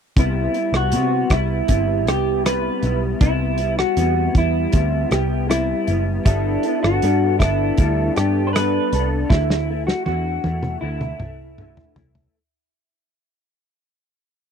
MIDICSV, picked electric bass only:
0, 0, Header, 1, 2, 480
1, 0, Start_track
1, 0, Tempo, 761421
1, 104, Time_signature, 4, 2, 24, 8
1, 9149, End_track
2, 0, Start_track
2, 0, Title_t, "Picked electric bass"
2, 0, Program_c, 0, 34
2, 105, Note_on_c, 0, 36, 89
2, 297, Note_off_c, 0, 36, 0
2, 457, Note_on_c, 0, 36, 86
2, 583, Note_on_c, 0, 48, 92
2, 592, Note_off_c, 0, 36, 0
2, 775, Note_off_c, 0, 48, 0
2, 820, Note_on_c, 0, 36, 86
2, 1014, Note_off_c, 0, 36, 0
2, 1064, Note_on_c, 0, 31, 77
2, 1308, Note_off_c, 0, 31, 0
2, 1308, Note_on_c, 0, 36, 76
2, 1690, Note_off_c, 0, 36, 0
2, 1783, Note_on_c, 0, 35, 75
2, 1975, Note_off_c, 0, 35, 0
2, 2023, Note_on_c, 0, 36, 83
2, 2407, Note_off_c, 0, 36, 0
2, 2503, Note_on_c, 0, 40, 91
2, 2696, Note_off_c, 0, 40, 0
2, 2743, Note_on_c, 0, 40, 75
2, 2936, Note_off_c, 0, 40, 0
2, 2985, Note_on_c, 0, 38, 92
2, 3177, Note_off_c, 0, 38, 0
2, 3223, Note_on_c, 0, 36, 77
2, 3608, Note_off_c, 0, 36, 0
2, 3707, Note_on_c, 0, 30, 77
2, 3898, Note_off_c, 0, 30, 0
2, 3945, Note_on_c, 0, 31, 86
2, 4137, Note_off_c, 0, 31, 0
2, 4313, Note_on_c, 0, 31, 83
2, 4405, Note_off_c, 0, 31, 0
2, 4432, Note_on_c, 0, 43, 99
2, 4664, Note_on_c, 0, 31, 84
2, 4673, Note_off_c, 0, 43, 0
2, 4856, Note_off_c, 0, 31, 0
2, 4908, Note_on_c, 0, 38, 86
2, 5099, Note_off_c, 0, 38, 0
2, 5152, Note_on_c, 0, 43, 85
2, 5533, Note_off_c, 0, 43, 0
2, 5629, Note_on_c, 0, 36, 86
2, 5819, Note_off_c, 0, 36, 0
2, 5866, Note_on_c, 0, 38, 94
2, 6249, Note_off_c, 0, 38, 0
2, 6352, Note_on_c, 0, 40, 86
2, 6541, Note_off_c, 0, 40, 0
2, 6590, Note_on_c, 0, 40, 97
2, 6780, Note_off_c, 0, 40, 0
2, 6823, Note_on_c, 0, 38, 89
2, 7016, Note_off_c, 0, 38, 0
2, 7064, Note_on_c, 0, 36, 74
2, 7448, Note_off_c, 0, 36, 0
2, 7539, Note_on_c, 0, 36, 88
2, 7733, Note_off_c, 0, 36, 0
2, 9149, End_track
0, 0, End_of_file